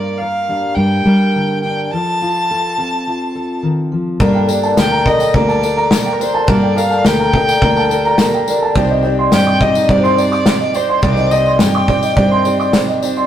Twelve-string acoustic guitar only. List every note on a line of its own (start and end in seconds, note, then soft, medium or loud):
4.20 4.48 G3 medium
4.20 4.49 A#3 medium
4.20 4.48 D4 loud
4.20 4.47 A4 loud
4.48 4.76 A#3 medium
4.48 4.77 D4 medium
4.48 4.77 A4 medium
4.77 5.05 G3 soft
4.77 5.06 A#3 medium
4.77 5.05 D4 medium
4.77 5.03 A4 medium
5.04 5.33 A#3 soft
5.04 5.34 D4 soft
5.04 5.34 A4 soft
5.33 5.62 G3 medium
5.33 5.62 A#3 medium
5.33 5.62 D4 medium
5.33 5.60 A4 medium
5.61 5.91 A#3 soft
5.61 5.91 D4 soft
5.61 5.90 A4 soft
5.91 6.19 G3 medium
5.91 6.20 A#3 medium
5.91 6.20 D4 soft
5.91 6.18 A4 medium
6.19 6.47 A#3 soft
6.19 6.47 D4 soft
6.19 6.48 A4 soft
6.47 6.76 G3 medium
6.47 6.76 A#3 medium
6.47 6.76 D4 medium
6.47 6.74 A4 medium
6.75 7.04 A#3 soft
6.75 7.05 D4 soft
6.75 7.04 A4 soft
7.04 7.33 G3 medium
7.04 7.34 A#3 medium
7.04 7.33 D4 soft
7.04 7.31 A4 medium
7.33 7.62 A#3 soft
7.33 7.62 D4 soft
7.33 7.61 A4 soft
7.63 7.91 G3 medium
7.63 7.91 A#3 medium
7.63 7.90 D4 medium
7.63 7.89 A4 medium
7.90 8.18 A#3 soft
7.90 8.19 D4 soft
7.90 8.18 A4 medium
8.18 8.47 G3 medium
8.18 8.47 A#3 medium
8.18 8.48 D4 medium
8.18 8.46 A4 medium
8.47 8.76 A#3 soft
8.47 8.76 D4 medium
8.47 8.76 A4 medium
8.75 9.04 C3 medium
8.75 9.04 D#3 medium
8.75 9.04 G3 medium
8.75 9.04 C4 loud
8.75 9.03 D4 loud
8.75 9.02 G4 loud
9.03 9.30 G3 soft
9.03 9.31 C4 soft
9.03 9.32 D4 medium
9.03 9.32 G4 medium
9.31 9.60 G3 medium
9.31 9.61 C4 soft
9.61 9.89 G3 soft
9.61 9.89 C4 soft
9.61 9.90 D4 soft
9.61 9.89 G4 soft
9.89 10.18 C3 medium
9.89 10.18 D#3 medium
9.89 10.18 G3 medium
9.89 10.18 C4 medium
9.89 10.17 D4 medium
9.89 10.16 G4 medium
10.17 10.44 G3 soft
10.17 10.46 C4 soft
10.17 10.46 D4 soft
10.17 10.46 G4 soft
10.45 10.74 G3 soft
10.45 10.75 C4 medium
10.45 10.74 D4 medium
10.45 10.72 G4 medium
10.74 11.02 G3 soft
10.74 11.02 C4 soft
10.74 11.03 D4 soft
10.74 11.03 G4 soft
11.02 11.31 C3 medium
11.02 11.31 D#3 medium
11.02 11.32 G3 medium
11.02 11.32 C4 medium
11.02 11.31 D4 medium
11.02 11.29 G4 medium
11.31 11.58 G3 soft
11.31 11.59 C4 soft
11.31 11.59 D4 medium
11.31 11.60 G4 soft
11.59 11.88 G3 soft
11.59 11.88 C4 medium
11.59 11.88 D4 medium
11.59 11.87 G4 medium
11.88 12.16 G3 soft
11.88 12.16 C4 soft
11.88 12.16 D4 soft
11.88 12.17 G4 medium
12.16 12.45 C3 medium
12.16 12.45 D#3 medium
12.16 12.45 G3 medium
12.16 12.45 C4 medium
12.16 12.44 D4 medium
12.16 12.43 G4 medium
12.45 12.72 G3 soft
12.45 12.74 C4 soft
12.45 12.74 D4 soft
12.45 12.73 G4 soft
12.74 13.02 G3 medium
12.74 13.03 C4 medium
12.74 13.02 D4 medium
12.74 13.01 G4 medium
13.02 13.27 G3 soft
13.02 13.27 C4 soft
13.02 13.27 D4 medium
13.02 13.27 G4 medium